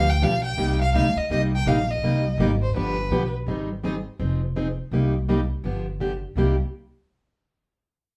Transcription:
0.00 0.21 D2 medium
0.00 0.11 F5 loud
0.10 0.25 G5 loud
0.21 0.57 B1 medium
0.21 0.33 D3 medium
0.21 0.33 F3 medium
0.21 0.33 B3 medium
0.21 0.33 D4 medium
0.21 0.34 G4 medium
0.21 0.45 F5 loud
0.45 0.78 G5 medium
0.57 0.93 C2 medium
0.57 0.79 C3 medium
0.57 0.79 G3 medium
0.57 0.79 A#3 medium
0.57 0.79 D#4 medium
0.57 0.79 G4 medium
0.82 0.94 F5 medium
0.94 1.15 D2 medium
0.94 1.05 C3 medium
0.94 1.05 G3 loud
0.94 1.06 A#3 medium
0.94 1.06 D#4 medium
0.94 1.06 G4 medium
0.94 1.19 F5 medium
1.16 1.31 D#5 medium
1.16 muted upright bass stroke soft
1.30 1.65 C2 medium
1.30 1.51 C3 medium
1.30 1.51 G3 medium
1.30 1.51 A#3 medium
1.30 1.52 D#4 medium
1.30 1.52 G4 medium
1.30 1.41 D#5 loud
1.56 1.69 G5 loud
1.66 2.01 A#1 medium
1.66 1.77 C3 medium
1.66 1.78 G3 medium
1.66 1.78 A#3 medium
1.66 1.78 D#4 medium
1.66 1.78 G4 medium
1.66 1.92 F5 medium
1.91 2.40 D#5 medium
2.02 2.37 C2 medium
2.02 2.24 C3 medium
2.02 2.24 G3 medium
2.02 2.24 A#3 medium
2.02 2.24 D#4 medium
2.02 2.24 G4 medium
2.38 2.73 G#1 medium
2.38 2.50 C3 medium
2.38 2.50 G3 medium
2.38 2.50 A#3 medium
2.38 2.51 D#4 loud
2.38 2.51 G4 loud
2.62 2.75 C5 medium
2.74 3.10 G1 medium
2.74 2.96 D3 medium
2.74 2.96 F3 medium
2.74 2.96 B3 medium
2.74 2.96 D4 medium
2.74 2.96 G4 medium
2.74 3.30 B4 medium
3.10 3.46 B1 medium
3.10 3.22 D3 medium
3.10 3.22 F3 medium
3.10 3.22 B3 medium
3.10 3.23 D4 medium
3.10 3.23 G4 medium
3.46 4.05 G#1 medium
3.46 3.68 D#3 medium
3.46 3.68 G3 medium
3.46 3.69 C4 medium
3.46 3.68 D#4 medium
3.46 3.69 G#4 medium
3.84 3.95 D#3 medium
3.84 3.94 G3 medium
3.84 3.95 C4 medium
3.84 3.95 D#4 medium
3.84 3.95 G#4 loud
4.19 4.77 F1 medium
4.19 4.40 F3 medium
4.19 4.40 C4 medium
4.19 4.41 D#4 medium
4.19 4.41 G#4 medium
4.56 4.67 F3 medium
4.56 4.67 C4 medium
4.56 4.67 D#4 medium
4.56 4.67 G#4 medium
4.91 5.49 C2 medium
4.91 5.13 C3 medium
4.91 5.13 G3 medium
4.91 5.13 A#3 medium
4.91 5.14 D#4 medium
4.91 5.14 G4 medium
5.29 5.39 C3 medium
5.29 5.39 G3 medium
5.29 5.40 A#3 medium
5.29 5.40 D#4 medium
5.29 5.40 G4 medium
5.64 6.22 G1 medium
5.64 5.85 D3 medium
5.64 5.85 F3 medium
5.64 5.86 B3 medium
5.64 5.86 D4 medium
5.64 5.86 G4 medium
6.00 6.11 D3 medium
6.00 6.12 F3 medium
6.00 6.12 B3 medium
6.00 6.12 D4 medium
6.00 6.12 G4 medium
6.36 6.57 C2 medium
6.36 6.54 C3 medium
6.36 6.55 G3 medium
6.36 6.55 A#3 medium
6.36 6.55 D#4 medium
6.36 6.55 G4 medium

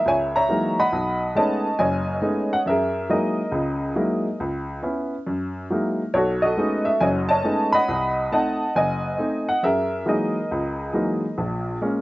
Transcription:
0.00 0.31 G#4 medium
0.00 0.32 A#4 medium
0.06 0.43 C#2 medium
0.06 0.35 C#5 medium
0.06 0.35 E5 medium
0.06 0.14 G#5 medium
0.36 0.90 C#5 medium
0.36 0.90 E5 medium
0.36 0.76 A#5 medium
0.49 0.79 E3 soft
0.49 0.80 F#3 soft
0.49 0.80 G#3 soft
0.49 0.79 A#3 soft
0.49 0.79 D#4 soft
0.80 1.36 D#5 medium
0.80 1.62 F#5 medium
0.80 1.39 B5 medium
0.92 1.30 B1 medium
1.35 1.66 G#3 soft
1.35 1.66 A3 soft
1.35 1.66 B3 soft
1.35 1.66 C#4 soft
1.35 1.67 D#4 medium
1.35 1.79 C#5 medium
1.35 1.78 D#5 medium
1.35 1.77 A5 medium
1.79 2.17 F#1 medium
1.79 2.17 F#2 medium
1.79 2.63 C#5 medium
1.79 2.62 D#5 medium
1.79 2.47 G#5 medium
2.21 2.52 G#3 soft
2.21 2.52 A3 soft
2.21 2.53 B3 soft
2.21 2.53 C#4 soft
2.21 2.52 D#4 medium
2.53 2.58 F#5 medium
2.66 3.04 F#2 medium
2.66 3.11 G#4 medium
2.66 3.11 A#4 medium
2.66 3.07 E5 medium
3.09 3.40 F#3 soft
3.09 3.40 G#3 soft
3.09 3.40 A#3 soft
3.09 3.40 D#4 soft
3.09 3.40 E4 medium
3.09 4.38 G#4 soft
3.09 4.38 A#4 soft
3.09 4.37 D#5 medium
3.51 3.90 C#2 medium
3.51 3.90 C#3 medium
3.95 4.26 F#3 soft
3.95 4.26 G#3 soft
3.95 4.27 A#3 soft
3.95 4.26 D#4 soft
3.95 4.27 E4 medium
4.40 4.78 C#2 medium
4.82 5.13 B3 soft
4.82 5.14 C#4 soft
4.82 5.14 E4 medium
5.27 5.65 F#2 medium
5.70 6.01 F#3 soft
5.70 6.01 G#3 soft
5.70 6.02 A#3 soft
5.70 6.01 D#4 soft
5.70 6.02 E4 soft
6.14 6.52 B1 medium
6.14 6.42 F#4 medium
6.14 6.43 A4 medium
6.14 6.44 C#5 medium
6.42 7.27 F#4 medium
6.42 7.27 A4 medium
6.42 6.87 D#5 medium
6.57 6.88 G#3 soft
6.57 6.88 A3 soft
6.57 6.88 B3 soft
6.57 6.88 C#4 soft
6.57 6.88 D#4 medium
6.85 6.99 E5 medium
7.00 7.39 F#1 medium
7.00 7.39 F#2 medium
7.00 7.29 C#5 medium
7.00 7.29 D#5 medium
7.00 7.07 G#5 medium
7.29 7.85 C#5 medium
7.29 7.73 D#5 medium
7.29 7.70 A5 loud
7.44 7.75 G#3 soft
7.44 7.75 A3 soft
7.44 7.75 B3 soft
7.44 7.75 C#4 soft
7.44 7.75 D#4 medium
7.72 8.32 D#5 medium
7.72 8.32 F#5 medium
7.72 8.27 B5 loud
7.88 8.26 C2 medium
8.32 8.62 A3 soft
8.32 8.62 C4 soft
8.32 8.63 D#4 medium
8.32 8.76 D#5 medium
8.32 9.16 F#5 medium
8.32 8.73 A5 medium
8.76 9.13 F#1 medium
8.76 9.60 D#5 medium
8.76 9.44 G#5 medium
9.18 9.49 A3 soft
9.18 9.49 C4 soft
9.18 9.49 D#4 medium
9.49 9.64 F#5 medium
9.63 10.01 F#2 medium
9.63 10.08 G#4 medium
9.63 10.07 A#4 medium
9.63 10.04 E5 medium
10.06 10.36 E3 soft
10.06 10.36 F#3 soft
10.06 10.37 G#3 soft
10.06 10.37 A#3 soft
10.06 10.37 D#4 medium
10.06 11.35 G#4 soft
10.06 11.35 A#4 soft
10.06 11.35 D#5 medium
10.52 10.89 C#2 medium
10.93 11.24 E3 soft
10.93 11.24 F#3 soft
10.93 11.24 G#3 soft
10.93 11.24 A#3 soft
10.93 11.25 D#4 medium
11.38 11.75 A#1 medium
11.38 11.76 A#2 medium
11.81 12.01 G#3 soft
11.81 12.01 A#3 soft
11.81 12.01 C#4 medium

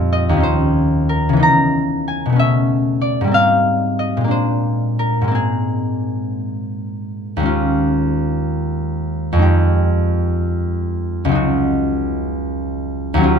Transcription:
0.00 0.39 F2 medium
0.00 0.40 G3 soft
0.00 0.40 G#3 soft
0.00 0.42 C4 soft
0.00 0.39 D#4 soft
0.00 0.42 C5 medium
0.00 1.46 F5 loud
0.13 2.42 D#5 medium
0.29 1.39 D#2 medium
0.29 1.41 F3 soft
0.37 2.35 C#4 soft
0.37 1.38 D#4 soft
0.43 1.56 C5 medium
1.09 1.46 A#4 medium
1.29 2.34 C#3 medium
1.33 2.37 E3 medium
1.33 2.31 B3 soft
1.39 2.40 D#4 soft
1.39 2.51 A#5 loud
2.08 2.41 G#5 medium
2.26 3.28 B2 medium
2.26 3.30 A3 soft
2.32 3.32 B3 soft
2.32 3.33 C#4 soft
2.39 3.45 E5 medium
3.01 3.35 D5 medium
3.21 4.28 G#2 medium
3.21 4.29 G3 soft
3.27 4.23 A#3 soft
3.27 5.30 C4 soft
3.34 4.45 F5 loud
3.99 4.34 D#5 medium
4.17 5.31 A#2 medium
4.17 5.23 G#3 soft
4.24 5.26 A#3 soft
4.24 5.37 D4 soft
4.31 7.51 C5 medium
4.99 8.89 A#4 medium
5.21 7.44 G#2 soft
5.21 7.39 G#3 soft
5.28 9.18 A#3 soft
5.28 7.49 C4 soft
5.35 9.25 G#4 medium
7.37 9.42 D#2 medium
7.37 9.34 G#3 medium
7.43 9.45 C#4 soft
7.43 11.36 F4 soft
9.33 11.32 F2 medium
9.33 13.23 G#3 medium
9.39 11.30 D#4 soft
9.39 11.36 G4 medium
11.25 13.22 C#2 medium
11.25 13.16 F#3 medium
11.31 13.39 D#4 medium
11.31 13.39 F#4 medium
13.14 13.39 D#2 medium
13.14 13.39 F#3 medium
13.21 13.39 C#4 medium
13.21 13.39 F4 medium

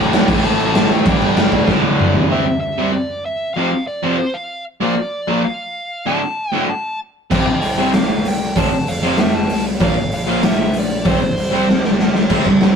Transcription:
0.00 0.26 D2 loud
0.00 0.25 A2 loud
0.00 0.29 D3 loud
0.00 0.45 G5 loud
0.13 0.23 D1 loud
0.13 snare loud
0.13 crash medium
0.26 0.38 A1 loud
0.26 0.89 A2 medium
0.26 0.90 E3 loud
0.26 kick loud
0.26 crash loud
0.31 0.89 A3 loud
0.44 0.54 A1 loud
0.44 0.59 A5 loud
0.44 crash medium
0.60 0.69 A1 medium
0.60 0.92 A5 loud
0.60 crash medium
0.74 0.84 A1 medium
0.74 snare loud
0.74 crash medium
0.90 1.00 D2 loud
0.90 1.04 A2 medium
0.90 1.05 E3 medium
0.90 1.05 A3 loud
0.90 1.22 G5 loud
0.90 crash medium
1.04 1.15 G1 loud
1.04 1.66 G2 loud
1.04 1.67 D3 loud
1.04 1.68 G3 loud
1.04 kick loud
1.04 crash medium
1.21 1.31 G1 loud
1.21 1.39 G5 medium
1.21 crash medium
1.36 1.46 G1 loud
1.36 snare loud
1.36 crash medium
1.40 1.55 G5 medium
1.52 1.62 G1 medium
1.52 kick medium
1.52 crash medium
1.56 2.13 D5 medium
1.67 1.78 D1 loud
1.67 2.29 D2 medium
1.67 2.30 A2 medium
1.67 2.31 D3 loud
1.67 kick loud
1.67 snare medium
1.83 1.93 D1 loud
1.83 high tom medium
1.99 2.09 D1 loud
1.99 mid tom loud
2.14 2.25 G1 medium
2.14 floor tom medium
2.31 2.44 C3 medium
2.31 2.44 G3 medium
2.31 2.44 C4 loud
2.31 2.60 E5 medium
2.61 2.92 E5 medium
2.78 2.91 C3 medium
2.78 2.91 G3 medium
2.78 2.92 C4 medium
2.93 3.25 D5 medium
3.26 3.54 E5 medium
3.54 3.69 F2 medium
3.54 3.69 C3 medium
3.54 3.87 F5 medium
3.58 3.70 F3 loud
3.87 4.20 D5 medium
4.03 4.16 F2 medium
4.03 4.16 C3 medium
4.03 4.16 F3 loud
4.18 4.35 C5 medium
4.34 4.63 F5 loud
4.81 4.94 A#2 medium
4.81 4.94 F3 loud
4.81 4.94 A#3 loud
4.81 5.44 D5 medium
5.28 5.41 A#2 loud
5.28 5.41 F3 loud
5.28 5.41 A#3 medium
5.45 6.09 F5 loud
6.06 6.19 D2 medium
6.06 6.19 A2 loud
6.06 6.20 D3 loud
6.06 6.52 A5 loud
6.52 6.66 D2 medium
6.52 6.66 A2 medium
6.52 6.66 D3 medium
6.52 6.65 G5 loud
6.69 6.98 A5 medium
7.31 7.45 C2 medium
7.31 7.44 C3 medium
7.31 7.44 G3 loud
7.31 7.44 C4 medium
7.31 7.60 G5 loud
7.31 kick loud
7.31 crash loud
7.47 7.61 A#1 loud
7.61 7.89 C2 medium
7.61 7.94 G5 loud
7.61 open hi-hat medium
7.78 7.91 C3 medium
7.78 7.91 G3 medium
7.78 7.91 C4 medium
7.93 8.07 C2 medium
7.93 8.26 F5 loud
7.93 snare loud
7.93 open hi-hat medium
8.10 8.23 C2 medium
8.25 8.52 C2 medium
8.25 8.58 G5 loud
8.25 open hi-hat medium
8.56 8.70 F1 medium
8.56 8.69 F2 loud
8.56 8.69 C3 medium
8.56 8.69 F3 loud
8.56 8.89 A5 loud
8.56 kick loud
8.56 open hi-hat medium
8.72 8.85 D1 medium
8.87 9.14 F1 medium
8.87 9.20 F5 medium
8.87 open hi-hat medium
9.03 9.16 F2 medium
9.03 9.16 C3 loud
9.03 9.16 F3 loud
9.17 9.32 F1 medium
9.17 9.36 E5 loud
9.17 snare loud
9.17 open hi-hat medium
9.34 9.48 F1 medium
9.34 9.63 A5 loud
9.49 9.77 C2 medium
9.49 open hi-hat medium
9.80 9.94 A#1 loud
9.80 9.93 A#2 loud
9.80 9.94 F3 loud
9.80 9.94 A#3 loud
9.80 10.13 F5 loud
9.80 kick loud
9.80 open hi-hat medium
9.97 10.10 G1 medium
10.11 10.39 A#1 medium
10.11 10.45 F5 medium
10.11 open hi-hat medium
10.27 10.40 A#2 medium
10.27 10.40 F3 loud
10.27 10.41 A#3 loud
10.42 10.57 A#1 medium
10.42 10.77 E5 medium
10.42 snare loud
10.42 open hi-hat medium
10.58 10.72 A#1 medium
10.73 11.01 A#1 medium
10.73 open hi-hat medium
10.79 11.09 D5 medium
11.05 11.19 C2 loud
11.05 11.18 C3 medium
11.05 11.19 G3 loud
11.05 11.19 C4 loud
11.05 11.96 C5 medium
11.05 kick loud
11.05 open hi-hat medium
11.20 11.34 A#1 loud
11.37 11.64 C2 medium
11.37 open hi-hat medium
11.51 11.64 C3 medium
11.51 11.65 G3 medium
11.51 11.65 C4 loud
11.68 11.81 C2 medium
11.68 snare medium
11.84 11.97 C2 medium
11.84 snare medium
11.99 12.27 C2 medium
11.99 snare loud
12.15 snare medium
12.30 12.44 C2 loud
12.30 12.45 C3 medium
12.30 12.45 G3 medium
12.30 12.45 C4 medium
12.30 kick loud
12.30 crash loud
12.30 crash medium
12.45 12.60 C2 medium
12.45 12.61 C3 medium
12.45 12.61 G3 medium
12.45 kick medium
12.60 12.76 C2 medium
12.60 12.76 C3 medium
12.60 12.76 G3 medium
12.60 snare loud
12.60 crash medium

